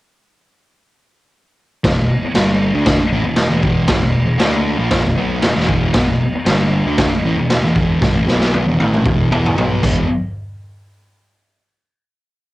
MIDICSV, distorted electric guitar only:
0, 0, Header, 1, 3, 480
1, 0, Start_track
1, 0, Key_signature, 1, "minor"
1, 0, Tempo, 511509
1, 1724, Time_signature, 4, 2, 24, 8
1, 4128, Tempo, 516351
1, 11688, End_track
2, 0, Start_track
2, 0, Title_t, "Distorted electric guitar"
2, 0, Program_c, 0, 30
2, 1723, Note_on_c, 0, 40, 103
2, 1729, Note_on_c, 0, 47, 110
2, 1836, Note_off_c, 0, 40, 0
2, 1839, Note_off_c, 0, 47, 0
2, 1850, Note_on_c, 0, 40, 71
2, 1853, Note_on_c, 0, 47, 69
2, 1950, Note_off_c, 0, 40, 0
2, 1968, Note_off_c, 0, 47, 0
2, 2199, Note_on_c, 0, 43, 94
2, 2209, Note_on_c, 0, 50, 98
2, 2218, Note_on_c, 0, 55, 107
2, 2554, Note_off_c, 0, 43, 0
2, 2554, Note_off_c, 0, 50, 0
2, 2563, Note_off_c, 0, 55, 0
2, 2565, Note_on_c, 0, 50, 93
2, 2573, Note_on_c, 0, 57, 106
2, 2585, Note_on_c, 0, 62, 110
2, 2797, Note_off_c, 0, 50, 0
2, 2801, Note_off_c, 0, 57, 0
2, 2807, Note_off_c, 0, 62, 0
2, 2932, Note_on_c, 0, 45, 95
2, 2937, Note_on_c, 0, 52, 96
2, 3031, Note_on_c, 0, 40, 65
2, 3034, Note_off_c, 0, 45, 0
2, 3038, Note_on_c, 0, 47, 69
2, 3043, Note_off_c, 0, 52, 0
2, 3230, Note_off_c, 0, 40, 0
2, 3233, Note_off_c, 0, 47, 0
2, 3279, Note_on_c, 0, 40, 96
2, 3287, Note_on_c, 0, 47, 104
2, 3291, Note_on_c, 0, 52, 99
2, 3635, Note_off_c, 0, 40, 0
2, 3640, Note_off_c, 0, 47, 0
2, 3641, Note_off_c, 0, 52, 0
2, 3644, Note_on_c, 0, 45, 103
2, 3652, Note_on_c, 0, 52, 114
2, 3758, Note_off_c, 0, 45, 0
2, 3760, Note_on_c, 0, 40, 61
2, 3762, Note_off_c, 0, 52, 0
2, 3763, Note_on_c, 0, 47, 76
2, 3956, Note_off_c, 0, 40, 0
2, 3957, Note_off_c, 0, 47, 0
2, 3996, Note_on_c, 0, 40, 64
2, 4002, Note_on_c, 0, 47, 79
2, 4105, Note_off_c, 0, 47, 0
2, 4109, Note_on_c, 0, 50, 97
2, 4115, Note_on_c, 0, 57, 93
2, 4122, Note_off_c, 0, 40, 0
2, 4123, Note_on_c, 0, 62, 108
2, 4470, Note_off_c, 0, 50, 0
2, 4473, Note_off_c, 0, 57, 0
2, 4474, Note_on_c, 0, 46, 75
2, 4477, Note_off_c, 0, 62, 0
2, 4478, Note_on_c, 0, 53, 90
2, 4491, Note_on_c, 0, 58, 95
2, 4712, Note_off_c, 0, 46, 0
2, 4714, Note_on_c, 0, 40, 65
2, 4715, Note_off_c, 0, 53, 0
2, 4717, Note_on_c, 0, 47, 71
2, 4721, Note_off_c, 0, 58, 0
2, 4818, Note_off_c, 0, 47, 0
2, 4829, Note_on_c, 0, 47, 97
2, 4839, Note_on_c, 0, 54, 98
2, 4840, Note_off_c, 0, 40, 0
2, 4845, Note_on_c, 0, 59, 103
2, 5070, Note_off_c, 0, 47, 0
2, 5074, Note_off_c, 0, 54, 0
2, 5078, Note_off_c, 0, 59, 0
2, 5078, Note_on_c, 0, 40, 52
2, 5085, Note_on_c, 0, 47, 66
2, 5193, Note_off_c, 0, 40, 0
2, 5194, Note_off_c, 0, 47, 0
2, 5204, Note_on_c, 0, 40, 103
2, 5206, Note_on_c, 0, 47, 91
2, 5217, Note_on_c, 0, 52, 108
2, 5553, Note_off_c, 0, 40, 0
2, 5558, Note_off_c, 0, 47, 0
2, 5564, Note_off_c, 0, 52, 0
2, 5564, Note_on_c, 0, 40, 99
2, 5572, Note_on_c, 0, 47, 112
2, 5677, Note_off_c, 0, 40, 0
2, 5681, Note_off_c, 0, 47, 0
2, 5701, Note_on_c, 0, 40, 67
2, 5702, Note_on_c, 0, 47, 76
2, 5801, Note_off_c, 0, 40, 0
2, 5813, Note_off_c, 0, 47, 0
2, 6055, Note_on_c, 0, 43, 94
2, 6068, Note_on_c, 0, 50, 101
2, 6072, Note_on_c, 0, 55, 104
2, 6400, Note_off_c, 0, 50, 0
2, 6403, Note_off_c, 0, 43, 0
2, 6411, Note_on_c, 0, 50, 94
2, 6412, Note_off_c, 0, 55, 0
2, 6426, Note_on_c, 0, 57, 97
2, 6433, Note_on_c, 0, 62, 103
2, 6642, Note_off_c, 0, 50, 0
2, 6649, Note_off_c, 0, 57, 0
2, 6653, Note_off_c, 0, 62, 0
2, 6791, Note_on_c, 0, 45, 101
2, 6796, Note_on_c, 0, 52, 100
2, 6892, Note_off_c, 0, 45, 0
2, 6894, Note_off_c, 0, 52, 0
2, 6911, Note_on_c, 0, 47, 79
2, 6918, Note_on_c, 0, 40, 67
2, 7091, Note_off_c, 0, 47, 0
2, 7095, Note_off_c, 0, 40, 0
2, 7147, Note_on_c, 0, 40, 101
2, 7149, Note_on_c, 0, 47, 103
2, 7152, Note_on_c, 0, 52, 107
2, 7487, Note_off_c, 0, 40, 0
2, 7491, Note_on_c, 0, 43, 107
2, 7492, Note_off_c, 0, 47, 0
2, 7493, Note_off_c, 0, 52, 0
2, 7502, Note_on_c, 0, 50, 113
2, 7603, Note_off_c, 0, 43, 0
2, 7603, Note_off_c, 0, 50, 0
2, 7607, Note_on_c, 0, 45, 85
2, 7617, Note_on_c, 0, 52, 92
2, 7716, Note_off_c, 0, 45, 0
2, 7720, Note_on_c, 0, 47, 98
2, 7721, Note_off_c, 0, 52, 0
2, 7725, Note_on_c, 0, 54, 104
2, 7738, Note_on_c, 0, 59, 114
2, 8078, Note_off_c, 0, 47, 0
2, 8080, Note_off_c, 0, 54, 0
2, 8087, Note_off_c, 0, 59, 0
2, 8087, Note_on_c, 0, 40, 86
2, 8095, Note_on_c, 0, 47, 89
2, 8201, Note_off_c, 0, 40, 0
2, 8206, Note_off_c, 0, 47, 0
2, 8212, Note_on_c, 0, 45, 98
2, 8223, Note_on_c, 0, 52, 97
2, 8233, Note_on_c, 0, 57, 99
2, 8443, Note_on_c, 0, 40, 91
2, 8444, Note_off_c, 0, 45, 0
2, 8450, Note_off_c, 0, 52, 0
2, 8453, Note_on_c, 0, 47, 87
2, 8455, Note_off_c, 0, 57, 0
2, 8465, Note_on_c, 0, 52, 94
2, 8680, Note_off_c, 0, 40, 0
2, 8682, Note_off_c, 0, 52, 0
2, 8685, Note_off_c, 0, 47, 0
2, 8694, Note_on_c, 0, 52, 93
2, 8698, Note_on_c, 0, 59, 88
2, 8706, Note_on_c, 0, 64, 107
2, 8924, Note_off_c, 0, 52, 0
2, 8927, Note_on_c, 0, 47, 77
2, 8928, Note_off_c, 0, 59, 0
2, 8932, Note_off_c, 0, 64, 0
2, 8933, Note_on_c, 0, 54, 88
2, 8945, Note_on_c, 0, 59, 91
2, 9162, Note_off_c, 0, 47, 0
2, 9165, Note_off_c, 0, 54, 0
2, 9171, Note_off_c, 0, 59, 0
2, 9175, Note_on_c, 0, 40, 109
2, 9181, Note_on_c, 0, 47, 106
2, 9185, Note_on_c, 0, 52, 116
2, 9365, Note_off_c, 0, 40, 0
2, 9368, Note_off_c, 0, 47, 0
2, 9370, Note_off_c, 0, 52, 0
2, 11688, End_track
3, 0, Start_track
3, 0, Title_t, "Muted distorted electric guitar strokes"
3, 1961, Note_on_c, 9, 29, 63
3, 2055, Note_off_c, 9, 29, 0
3, 2091, Note_on_c, 9, 29, 60
3, 2185, Note_off_c, 9, 29, 0
3, 2800, Note_on_c, 9, 29, 59
3, 2894, Note_off_c, 9, 29, 0
3, 5812, Note_on_c, 9, 29, 64
3, 5905, Note_off_c, 9, 29, 0
3, 5930, Note_on_c, 9, 29, 58
3, 6023, Note_off_c, 9, 29, 0
3, 6670, Note_on_c, 9, 29, 62
3, 6763, Note_off_c, 9, 29, 0
3, 11688, End_track
0, 0, End_of_file